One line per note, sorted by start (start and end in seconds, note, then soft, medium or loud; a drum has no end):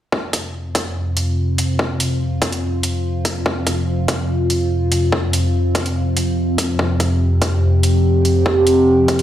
0.12 9.22 F2 medium
0.12 9.22 C3 medium
0.12 9.22 C4 medium
0.12 6.77 F4 medium
0.12 kick loud
0.33 kick medium
0.33 closed hi-hat medium
0.75 kick loud
0.75 closed hi-hat medium
1.17 closed hi-hat medium
1.58 closed hi-hat medium
1.79 kick loud
2.00 closed hi-hat medium
2.42 kick loud
2.42 closed hi-hat medium
2.52 closed hi-hat soft
2.83 closed hi-hat medium
3.25 kick medium
3.25 closed hi-hat medium
3.46 kick loud
3.67 kick medium
3.67 closed hi-hat medium
4.08 kick loud
4.08 closed hi-hat medium
4.50 closed hi-hat medium
4.92 closed hi-hat medium
5.12 kick loud
5.33 closed hi-hat medium
5.75 kick loud
5.75 closed hi-hat medium
5.86 closed hi-hat soft
6.17 closed hi-hat medium
6.58 kick medium
6.58 closed hi-hat medium
6.79 9.22 G4 medium
6.79 kick loud
7.00 kick medium
7.00 closed hi-hat medium
7.42 kick loud
7.42 closed hi-hat medium
7.83 closed hi-hat medium
8.25 closed hi-hat medium
8.46 kick loud
8.67 closed hi-hat medium
9.08 kick loud
9.08 closed hi-hat medium
9.19 closed hi-hat soft